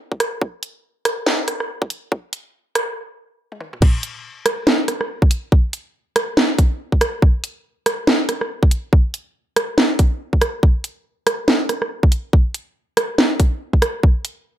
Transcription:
0.12 kick medium
0.20 cross-stick medium
0.20 closed hi-hat medium
0.42 kick loud
0.63 closed hi-hat medium
1.05 cross-stick medium
1.05 closed hi-hat medium
1.26 snare loud
1.48 cross-stick soft
1.48 closed hi-hat medium
1.60 cross-stick soft
1.82 kick loud
1.90 closed hi-hat medium
2.12 kick loud
2.33 closed hi-hat medium
2.75 cross-stick medium
2.75 closed hi-hat medium
3.52 high tom medium
3.61 mid tom medium
3.73 mid tom medium
3.82 kick loud
3.82 crash loud
4.03 closed hi-hat medium
4.46 cross-stick medium
4.46 closed hi-hat medium
4.67 snare loud
4.88 cross-stick medium
4.88 closed hi-hat medium
5.01 cross-stick medium
5.22 kick loud
5.31 closed hi-hat medium
5.52 kick loud
5.73 closed hi-hat medium
6.16 cross-stick medium
6.16 closed hi-hat medium
6.37 snare loud
6.58 kick loud
6.58 closed hi-hat medium
6.92 kick medium
7.01 cross-stick medium
7.01 closed hi-hat medium
7.22 kick loud
7.44 closed hi-hat medium
7.86 cross-stick medium
7.86 closed hi-hat medium
8.07 snare loud
8.29 cross-stick medium
8.29 closed hi-hat medium
8.41 cross-stick medium
8.63 kick loud
8.71 closed hi-hat medium
8.93 kick loud
9.14 closed hi-hat medium
9.56 cross-stick medium
9.56 closed hi-hat medium
9.78 snare loud
9.99 kick loud
9.99 closed hi-hat medium
10.33 kick medium
10.41 cross-stick medium
10.41 closed hi-hat medium
10.63 kick loud
10.84 closed hi-hat medium
11.27 cross-stick medium
11.27 closed hi-hat medium
11.48 snare loud
11.69 cross-stick medium
11.69 closed hi-hat medium
11.82 cross-stick medium
12.03 kick loud
12.12 closed hi-hat medium
12.33 kick loud
12.54 closed hi-hat medium
12.97 cross-stick medium
12.97 closed hi-hat medium
13.18 snare loud
13.40 kick loud
13.40 closed hi-hat medium
13.73 kick medium
13.82 cross-stick medium
13.82 closed hi-hat medium
14.03 kick loud
14.25 closed hi-hat medium

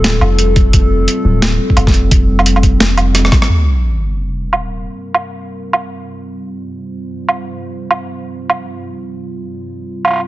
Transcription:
0.00 0.21 D1 medium
0.00 10.28 G3 medium
0.00 10.28 C4 medium
0.00 3.49 F4 medium
0.00 3.49 A4 medium
0.04 snare loud
0.04 closed hi-hat medium
0.21 1.07 F1 medium
0.21 low woodblock medium
0.39 closed hi-hat medium
0.56 kick loud
0.56 closed hi-hat soft
0.73 kick loud
0.73 closed hi-hat medium
1.08 closed hi-hat medium
1.25 1.59 D1 medium
1.42 snare loud
1.42 closed hi-hat medium
1.70 kick medium
1.77 2.10 F1 medium
1.77 closed hi-hat medium
1.77 low woodblock medium
1.87 kick loud
1.87 snare soft
1.94 closed hi-hat soft
2.11 3.31 F1 loud
2.11 kick loud
2.11 closed hi-hat medium
2.39 low woodblock medium
2.46 closed hi-hat medium
2.56 low woodblock soft
2.63 kick medium
2.63 closed hi-hat soft
2.80 snare loud
2.80 closed hi-hat medium
2.98 closed hi-hat soft
2.98 low woodblock medium
3.15 cross-stick medium
3.15 closed hi-hat medium
3.25 cross-stick medium
3.32 kick loud
3.32 cross-stick medium
3.32 closed hi-hat soft
3.42 cross-stick medium
3.49 sub drop medium
4.17 6.59 A#4 medium
4.36 10.28 F4 medium
4.53 low woodblock soft
5.14 low woodblock soft
5.73 low woodblock soft
6.49 10.20 C5 medium
7.29 low woodblock soft
7.91 low woodblock soft
8.50 low woodblock soft
10.05 low woodblock soft
10.08 low woodblock soft
10.11 low woodblock soft
10.13 low woodblock soft
10.16 low woodblock soft
10.18 low woodblock soft
10.20 low woodblock soft

